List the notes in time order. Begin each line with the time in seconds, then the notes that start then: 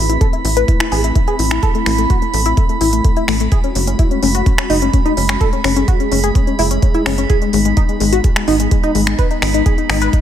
Already playing: A1 A3 C4 E4 B5
0.09 E4, closed hi-hat
0.21 A4, kick, closed hi-hat
0.33 E4, closed hi-hat
0.45 A1 E4, open hi-hat
0.57 B4, closed hi-hat
0.68 E4, kick, closed hi-hat
0.80 E4, finger snap, closed hi-hat
0.92 A1 G#4, open hi-hat
1.04 E4, closed hi-hat
1.15 E4, kick, closed hi-hat
1.27 G#4, closed hi-hat
1.39 A1 E4, open hi-hat
1.51 E4, finger snap
1.63 A4, kick, closed hi-hat
1.75 A3, closed hi-hat
1.86 A1 A3, finger snap, open hi-hat
1.98 A3, closed hi-hat
2.10 F#4, kick, closed hi-hat
2.22 A3, closed hi-hat
2.34 A1 A3, open hi-hat
2.46 E4, closed hi-hat
2.57 A3, kick, closed hi-hat
2.69 A3, closed hi-hat
2.81 A1 E4, open hi-hat
2.93 A3, closed hi-hat
3.04 A3, kick, closed hi-hat
3.16 E4, closed hi-hat
3.28 A1 A3, finger snap, open hi-hat
3.40 A3, closed hi-hat
3.52 G#3 F#4 G#4, kick, closed hi-hat
3.64 C#4, closed hi-hat
3.75 F#1 C#4, open hi-hat
3.87 C#4, closed hi-hat
3.99 E4, kick, closed hi-hat
4.11 C#4, closed hi-hat
4.23 F#1 C#4, open hi-hat
4.35 F#4, closed hi-hat
4.46 C#4, kick, closed hi-hat
4.58 C#4, finger snap, closed hi-hat
4.70 F#1 D#4, open hi-hat
4.82 C#4, closed hi-hat
4.93 C#4, kick, closed hi-hat
5.06 D#4, closed hi-hat
5.17 F#1 C#4, open hi-hat
5.29 C#4, finger snap
5.41 G#4 A4, kick, closed hi-hat
5.53 C#4, closed hi-hat
5.64 F#1 C#4, finger snap, open hi-hat
5.76 C#4, closed hi-hat
5.88 F#4, kick, closed hi-hat
6.00 C#4, closed hi-hat
6.12 F#1 C#4, open hi-hat
6.24 G#4, closed hi-hat
6.35 C#4, kick, closed hi-hat
6.47 C#4, closed hi-hat
6.59 F#1 E4, open hi-hat
6.71 C#4, closed hi-hat
6.82 C#4, kick, closed hi-hat
6.94 E4, closed hi-hat
7.06 F#1 C#4, finger snap, open hi-hat
7.18 C#4, closed hi-hat
7.30 B3 D#4 G#4, kick, closed hi-hat
7.42 G#3, closed hi-hat
7.53 G#1 G#3, open hi-hat
7.65 G#3, closed hi-hat
7.77 D#4, kick, closed hi-hat
7.89 G#3, closed hi-hat
8.00 G#1 G#3, open hi-hat
8.13 F#4, closed hi-hat
8.24 G#3, kick, closed hi-hat
8.36 G#3, finger snap, closed hi-hat
8.48 G#1 D#4, open hi-hat
8.60 G#3, closed hi-hat
8.71 G#3, kick, closed hi-hat
8.83 D#4, closed hi-hat
8.95 G#1 G#3, open hi-hat
9.07 G#3, finger snap, closed hi-hat
9.19 B4, kick, closed hi-hat
9.31 D#4, closed hi-hat
9.42 G#1 D#4, finger snap, open hi-hat
9.54 D#4, closed hi-hat
9.66 G#4, kick, closed hi-hat
9.78 D#4, closed hi-hat
9.89 G#1 D#4, finger snap, open hi-hat
10.02 B4, closed hi-hat
10.13 D#4, kick, closed hi-hat, swell